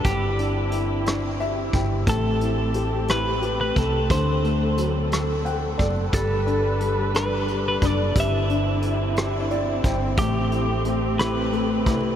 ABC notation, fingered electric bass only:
X:1
M:6/8
L:1/8
Q:3/8=59
K:Clyd
V:1 name="Fingered electric bass" clef=bass
G,,,4- G,,, G,,, | A,,,4- A,,, C,, | D,,4- D,, F,,, | G,,,4- G,,, F,,, |
G,,,4- G,,, G,,, | A,,,4- A,,, C,, |]